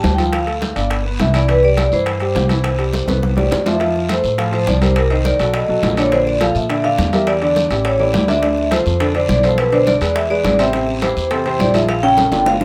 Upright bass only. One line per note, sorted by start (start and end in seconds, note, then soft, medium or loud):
0.04 0.71 D2 medium
0.76 1.17 G1 medium
1.20 1.87 C2 medium
1.92 2.32 G2 medium
2.35 3.02 C2 medium
3.08 3.48 C2 medium
3.51 4.18 F2 medium
4.23 4.64 A2 medium
4.68 5.34 C2 medium
5.40 5.66 B1 medium
5.68 5.82 B1 medium
5.83 6.50 A#1 medium
6.55 6.95 A#2 medium
6.98 7.65 E2 medium
7.70 8.11 A1 medium
8.14 8.80 D2 medium
8.86 9.26 F2 medium
9.29 9.96 B1 medium
10.01 10.41 E2 medium
10.44 11.11 A1 medium
11.16 11.57 E2 medium
11.59 12.26 A#1 medium
12.31 12.58 G1 medium
12.61 12.64 B1 medium